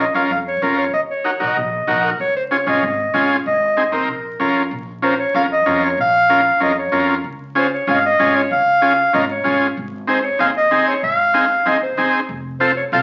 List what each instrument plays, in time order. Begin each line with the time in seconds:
0.00 transistor combo organ A#4, clarinet D#5
0.14 upright bass F2, transistor combo organ C#4 F4 A#4, clarinet F5
0.30 upright bass F2, clarinet F5
0.48 clarinet C#5
0.62 upright bass F2, transistor combo organ C#4 F4 A#4, clarinet A#4
0.78 clarinet C#5
0.93 upright bass D#2, clarinet D#5
1.10 clarinet C#5
1.24 transistor combo organ D#4 F#4 A#4
1.40 upright bass A#1, transistor combo organ D#4 F#4 A#4, clarinet D#5
1.57 upright bass A#1
1.87 upright bass A#1, transistor combo organ D#4 F#4 A#4
2.04 clarinet A#4
2.20 upright bass C#2, clarinet C#5
2.36 clarinet C5
2.51 transistor combo organ C#4 F4 G#4, clarinet C#5
2.67 upright bass G#1, transistor combo organ C#4 F4 G#4, clarinet D#5
2.82 upright bass G#1
3.14 upright bass G#1, transistor combo organ C#4 F4 G#4
3.46 upright bass G#1, clarinet D#5
3.77 transistor combo organ C4 D#4 G#4
3.92 upright bass D#2, transistor combo organ C4 D#4 A#4, clarinet A#4
4.08 upright bass A#1
4.40 upright bass F2, transistor combo organ C#4 F4 A#4
4.71 upright bass A#1
5.02 transistor combo organ C#4 F4 A#4, clarinet C5
5.19 clarinet C#5
5.34 upright bass F2, transistor combo organ C#4 F4 A#4, clarinet F5
5.53 clarinet D#5
5.66 upright bass F2, transistor combo organ C#4 F4 A#4
5.84 clarinet C#5
5.97 upright bass A#1, clarinet F5
6.29 transistor combo organ C#4 F4 A#4
6.60 upright bass F2, transistor combo organ C#4 F4 A#4, clarinet D#5
6.78 clarinet C#5
6.92 upright bass F2, transistor combo organ C#4 F4 A#4
7.24 upright bass C#2
7.55 transistor combo organ C#4 F4 G#4, clarinet C5
7.74 clarinet C#5
7.87 upright bass G#1, transistor combo organ C#4 F4 G#4, clarinet F5
7.93 clarinet D#5
7.98 clarinet F5
8.06 clarinet D#5
8.19 upright bass G#1, transistor combo organ C#4 F4 G#4
8.36 clarinet C#5
8.51 upright bass C#2, clarinet F5
8.82 transistor combo organ C#4 F4 G#4
9.13 upright bass G#1, transistor combo organ C#4 F4 A#4, clarinet D#5
9.30 clarinet C#5
9.44 upright bass G#1, transistor combo organ C#4 F4 G#4
9.77 upright bass G#1
10.07 transistor combo organ C4 D#4 G#4, clarinet C5
10.24 clarinet C#5
10.39 upright bass D#2, transistor combo organ C4 D#4 G#4, clarinet F5
10.57 clarinet D#5
10.71 upright bass D#2, transistor combo organ C4 D#4 G#4
10.88 clarinet C#5
11.03 upright bass G#1, clarinet F5
11.34 transistor combo organ C4 D#4 G#4
11.66 upright bass D#2, transistor combo organ C4 D#4 G#4, clarinet D#5
11.83 clarinet C5
11.97 upright bass D#2, transistor combo organ C4 D#4 G#4
12.29 upright bass F1
12.60 transistor combo organ C4 F4 A4, clarinet C5
12.77 clarinet C#5
12.92 upright bass C2, transistor combo organ C4 F4 A4, clarinet F5